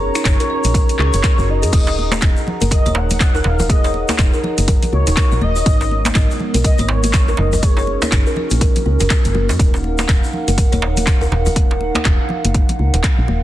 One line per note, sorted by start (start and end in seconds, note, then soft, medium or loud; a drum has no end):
0.00 0.11 F#1 loud
0.00 1.71 C#4 medium
0.00 1.71 F#4 medium
0.00 1.00 C#5 loud
0.00 5.62 A#5 medium
0.15 0.24 D#4 loud
0.15 finger snap medium
0.15 closed hi-hat soft
0.15 shaker medium
0.25 0.37 F#1 medium
0.25 finger snap loud
0.25 kick loud
0.25 clap loud
0.25 closed hi-hat medium
0.25 shaker medium
0.40 0.49 A#4 loud
0.40 closed hi-hat soft
0.40 shaker soft
0.50 0.64 D#5 medium
0.64 0.84 A#1 medium
0.64 closed hi-hat soft
0.64 shaker medium
0.74 0.88 A#4 loud
0.74 kick loud
0.74 closed hi-hat medium
0.74 shaker medium
0.89 closed hi-hat soft
0.89 shaker soft
0.99 1.11 C#2 medium
0.99 1.12 G#4 medium
0.99 1.51 C#5 loud
0.99 clap medium
1.14 1.22 F#1 medium
1.14 1.22 A#4 medium
1.14 closed hi-hat soft
1.14 shaker medium
1.24 finger snap loud
1.24 kick loud
1.24 clap loud
1.24 closed hi-hat medium
1.24 shaker medium
1.38 1.65 F#1 medium
1.38 1.47 F#4 medium
1.38 shaker soft
1.48 1.56 D#4 medium
1.48 2.47 D#5 loud
1.62 1.71 F#2 loud
1.62 1.72 G#4 loud
1.62 closed hi-hat soft
1.62 shaker medium
1.72 2.19 D#1 loud
1.72 1.86 D#4 medium
1.72 7.59 D#4 medium
1.72 3.68 D#5 medium
1.72 5.62 F#5 medium
1.72 kick loud
1.72 closed hi-hat medium
1.72 crash medium
1.72 high conga medium
1.72 shaker medium
1.87 1.96 C#4 medium
1.87 djembe slap medium
1.87 shaker soft
1.99 muted conga medium
2.12 finger snap medium
2.12 closed hi-hat soft
2.12 djembe slap loud
2.12 high conga medium
2.12 shaker medium
2.21 2.34 D#1 medium
2.21 finger snap loud
2.21 kick loud
2.21 clap loud
2.21 closed hi-hat medium
2.21 shaker medium
2.36 shaker soft
2.47 muted conga soft
2.47 low conga loud
2.61 2.81 F#1 medium
2.61 2.70 A#4 medium
2.61 closed hi-hat soft
2.61 djembe tone medium
2.61 high conga medium
2.61 shaker medium
2.71 2.84 A#4 medium
2.71 2.98 D#5 loud
2.71 kick loud
2.71 closed hi-hat medium
2.71 low conga medium
2.71 shaker medium
2.86 3.42 D#1 loud
2.86 2.91 C#5 loud
2.86 closed hi-hat soft
2.86 muted conga medium
2.86 high conga loud
2.86 shaker soft
2.95 3.47 F#5 loud
2.95 djembe slap loud
2.95 high conga medium
3.10 closed hi-hat soft
3.10 high conga loud
3.10 low conga medium
3.10 shaker medium
3.20 finger snap loud
3.20 kick loud
3.20 clap loud
3.20 closed hi-hat medium
3.20 muted conga soft
3.20 shaker medium
3.35 3.44 A#4 loud
3.35 djembe tone medium
3.35 djembe bass loud
3.35 shaker soft
3.44 4.04 D#1 loud
3.44 3.58 D#4 medium
3.44 3.69 F5 loud
3.44 djembe slap medium
3.44 djembe tone medium
3.59 3.65 A#4 loud
3.59 muted conga medium
3.59 low conga loud
3.59 djembe bass medium
3.59 shaker medium
3.69 3.83 G#4 loud
3.69 4.15 D#5 medium
3.69 5.65 D#5 medium
3.69 kick loud
3.69 closed hi-hat medium
3.69 high conga medium
3.69 shaker medium
3.84 3.90 C#5 loud
3.84 djembe slap medium
3.84 shaker soft
3.94 muted conga soft
4.09 4.18 D#4 loud
4.09 finger snap medium
4.09 closed hi-hat soft
4.09 djembe slap loud
4.09 djembe tone medium
4.09 high conga loud
4.09 shaker medium
4.19 4.31 D#1 loud
4.19 finger snap loud
4.19 kick loud
4.19 clap loud
4.19 closed hi-hat medium
4.19 djembe bass medium
4.19 shaker medium
4.34 4.42 A#4 loud
4.34 shaker soft
4.44 4.57 D#5 medium
4.44 muted conga soft
4.44 low conga loud
4.58 4.77 F#1 medium
4.58 closed hi-hat soft
4.58 high conga medium
4.58 shaker medium
4.68 4.81 A#4 loud
4.68 kick loud
4.68 closed hi-hat medium
4.68 low conga loud
4.68 shaker medium
4.83 closed hi-hat soft
4.83 muted conga soft
4.83 low conga loud
4.83 shaker soft
4.92 5.05 C#2 medium
4.92 5.06 F#4 medium
4.92 5.38 C#5 loud
4.92 high conga medium
5.07 5.15 D#1 medium
5.07 5.17 D#4 loud
5.07 closed hi-hat soft
5.07 djembe tone medium
5.07 shaker medium
5.17 5.30 A#4 medium
5.17 finger snap loud
5.17 kick loud
5.17 clap loud
5.17 closed hi-hat medium
5.17 muted conga soft
5.17 shaker medium
5.32 5.40 A#1 loud
5.32 5.40 D#5 medium
5.32 shaker soft
5.41 5.63 D#1 medium
5.41 5.55 D#5 medium
5.41 6.36 D#5 loud
5.41 high conga loud
5.41 low conga loud
5.56 5.65 C#5 medium
5.56 muted conga soft
5.56 shaker medium
5.66 6.12 G#1 loud
5.66 7.61 G#3 medium
5.66 7.61 B3 medium
5.66 5.79 D#4 medium
5.66 13.43 A#4 medium
5.66 kick loud
5.66 closed hi-hat medium
5.66 high conga medium
5.66 shaker medium
5.81 5.90 C#4 medium
5.81 djembe slap medium
5.81 shaker soft
5.91 muted conga medium
6.05 finger snap medium
6.05 closed hi-hat soft
6.05 djembe slap loud
6.05 high conga medium
6.05 shaker medium
6.15 6.27 G#1 loud
6.15 finger snap loud
6.15 kick loud
6.15 clap loud
6.15 closed hi-hat medium
6.15 shaker medium
6.31 shaker soft
6.39 muted conga soft
6.39 low conga loud
6.54 6.74 B1 medium
6.54 6.64 A#4 medium
6.54 closed hi-hat soft
6.54 high conga medium
6.54 djembe tone medium
6.54 shaker medium
6.64 6.78 A#4 medium
6.64 6.83 D#5 loud
6.64 kick loud
6.64 closed hi-hat medium
6.64 low conga medium
6.64 shaker medium
6.78 7.36 G#1 loud
6.78 6.85 C#5 loud
6.78 closed hi-hat soft
6.78 muted conga soft
6.78 high conga loud
6.78 shaker soft
6.83 6.90 D#5 medium
6.89 7.39 C#5 loud
6.89 djembe slap loud
6.89 high conga medium
7.03 closed hi-hat soft
7.03 high conga loud
7.03 low conga medium
7.03 shaker medium
7.13 finger snap loud
7.13 kick loud
7.13 clap loud
7.13 closed hi-hat medium
7.13 shaker medium
7.28 7.37 A#4 loud
7.28 djembe tone medium
7.28 djembe bass medium
7.28 shaker soft
7.37 7.98 F#1 loud
7.37 7.51 D#4 medium
7.37 7.65 D#5 loud
7.37 djembe slap medium
7.37 djembe tone medium
7.53 7.58 A#4 loud
7.53 muted conga medium
7.53 low conga loud
7.53 djembe bass medium
7.53 shaker medium
7.63 9.58 C#4 medium
7.63 9.58 F#4 medium
7.63 7.76 G#4 loud
7.63 8.12 C#5 medium
7.63 kick loud
7.63 closed hi-hat medium
7.63 high conga medium
7.63 shaker medium
7.77 7.83 C#5 loud
7.77 djembe slap medium
7.77 shaker soft
7.87 muted conga soft
8.02 8.11 D#4 loud
8.02 finger snap medium
8.02 closed hi-hat soft
8.02 djembe slap loud
8.02 djembe tone medium
8.02 high conga medium
8.02 shaker medium
8.12 8.24 F#1 loud
8.12 finger snap loud
8.12 kick loud
8.12 clap loud
8.12 closed hi-hat medium
8.12 djembe bass medium
8.12 shaker medium
8.27 8.36 A#4 loud
8.27 shaker soft
8.36 8.51 D#5 medium
8.36 muted conga soft
8.36 low conga loud
8.51 8.71 A#1 medium
8.51 closed hi-hat soft
8.51 high conga medium
8.51 shaker medium
8.61 8.74 A#4 loud
8.61 kick loud
8.61 closed hi-hat medium
8.61 low conga medium
8.61 shaker medium
8.76 closed hi-hat soft
8.76 muted conga medium
8.76 low conga loud
8.76 shaker soft
8.86 8.98 C#2 medium
8.86 8.99 A#4 medium
8.86 high conga medium
9.00 9.09 F#1 medium
9.00 9.06 A#4 loud
9.00 closed hi-hat soft
9.00 djembe tone medium
9.00 shaker medium
9.10 finger snap loud
9.10 kick loud
9.10 clap loud
9.10 closed hi-hat medium
9.10 muted conga soft
9.10 shaker medium
9.25 9.51 F#1 medium
9.25 9.34 A#3 medium
9.25 closed hi-hat soft
9.25 shaker soft
9.35 9.43 C#4 loud
9.35 high conga loud
9.35 low conga loud
9.49 9.58 F#2 medium
9.49 9.59 D#5 medium
9.49 djembe slap medium
9.49 muted conga soft
9.49 shaker medium
9.59 10.06 D#1 loud
9.59 9.73 D#4 medium
9.59 13.43 D#4 medium
9.59 13.43 F5 medium
9.59 13.43 F#5 medium
9.59 kick loud
9.59 closed hi-hat medium
9.59 high conga medium
9.59 shaker medium
9.74 9.83 C#4 medium
9.74 djembe slap medium
9.74 shaker soft
9.84 muted conga soft
9.99 finger snap medium
9.99 closed hi-hat soft
9.99 djembe slap loud
9.99 high conga loud
9.99 shaker medium
10.09 10.21 D#1 medium
10.09 finger snap loud
10.09 kick loud
10.09 clap loud
10.09 closed hi-hat medium
10.09 shaker medium
10.24 shaker soft
10.33 muted conga soft
10.33 low conga medium
10.48 10.67 F#1 medium
10.48 10.57 A#4 medium
10.48 closed hi-hat soft
10.48 high conga medium
10.48 djembe tone medium
10.48 shaker medium
10.58 10.71 A#4 medium
10.58 kick loud
10.58 closed hi-hat medium
10.58 low conga medium
10.58 shaker medium
10.72 11.29 D#1 loud
10.72 10.78 C#5 loud
10.72 closed hi-hat soft
10.72 muted conga medium
10.72 high conga loud
10.72 shaker soft
10.82 djembe slap loud
10.82 high conga medium
10.97 closed hi-hat soft
10.97 high conga loud
10.97 low conga medium
10.97 shaker medium
11.07 finger snap loud
11.07 kick loud
11.07 clap loud
11.07 closed hi-hat medium
11.07 shaker medium
11.21 11.31 A#4 loud
11.21 djembe tone medium
11.21 djembe bass medium
11.21 shaker soft
11.32 11.91 D#1 loud
11.32 11.45 D#4 medium
11.32 djembe slap medium
11.32 djembe tone medium
11.46 11.52 A#4 loud
11.46 muted conga medium
11.46 djembe bass medium
11.46 low conga loud
11.46 shaker medium
11.56 kick loud
11.56 closed hi-hat medium
11.56 high conga medium
11.71 djembe slap medium
11.81 muted conga soft
11.95 finger snap medium
11.95 closed hi-hat soft
11.95 djembe slap loud
11.95 high conga medium
11.95 djembe tone medium
12.05 12.17 D#1 loud
12.05 finger snap loud
12.05 kick loud
12.05 clap loud
12.05 closed hi-hat medium
12.05 djembe bass loud
12.29 muted conga soft
12.29 low conga loud
12.45 12.64 F#1 medium
12.45 closed hi-hat soft
12.45 high conga medium
12.54 kick loud
12.54 closed hi-hat medium
12.54 low conga medium
12.69 closed hi-hat soft
12.69 muted conga medium
12.69 low conga loud
12.79 12.91 C#2 medium
12.79 high conga medium
12.94 13.02 D#1 medium
12.94 closed hi-hat soft
12.94 djembe tone medium
13.04 finger snap loud
13.04 kick loud
13.04 clap loud
13.04 closed hi-hat medium
13.04 muted conga soft
13.18 13.27 A#1 loud
13.28 13.43 D#1 medium
13.28 high conga loud
13.28 low conga medium